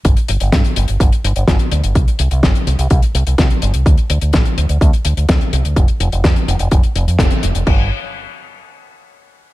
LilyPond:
<<
  \new Staff \with { instrumentName = "Fingered electric bass" } { \clef bass \time 4/4 \key d \mixolydian \tempo 4 = 126 g,,16 r16 g,,16 g,,16 g,16 r16 g,,16 g,,16 g,,16 r16 g,,16 g,,16 g,,16 r16 d,16 g,,16 | c,16 r16 c,16 c,16 g,,16 r16 c,16 c,16 c,16 r16 c,16 c,16 c,16 r16 g,,16 c,16 | d,16 r16 d,16 d,16 a,,16 r16 d,16 d,16 d,16 r16 d,16 d,16 d,16 r16 c,16 d,16 | f,,16 r16 f,,16 f,,16 f,16 r16 f,,16 f,,16 f,,16 r16 f,,16 f,16 f,,16 r16 f,,16 f,,16 |
g,,8 r2. r8 | }
  \new DrumStaff \with { instrumentName = "Drums" } \drummode { \time 4/4 <hh bd>16 hh16 hh16 hh16 <hh bd sn>16 hh16 hh16 hh16 <hh bd>16 hh16 hh16 hh16 <hh bd sn>16 hh16 hh16 hh16 | <hh bd>16 hh16 hh16 hh16 <hh bd sn>16 hh16 hh16 hh16 <hh bd>16 hh16 hh16 hh16 <hh bd sn>16 hh16 hh16 hh16 | <hh bd>16 hh16 hh16 hh16 <hh bd sn>16 hh16 hh16 hh16 <hh bd>16 hh16 hh16 hh16 <hh bd sn>16 hh16 hh16 hh16 | <hh bd>16 hh16 hh16 hh16 <hh bd sn>16 hh16 hh16 hh16 <hh bd>16 hh16 hh16 hh16 <hh bd sn>16 hh16 hh16 hh16 |
<cymc bd>4 r4 r4 r4 | }
>>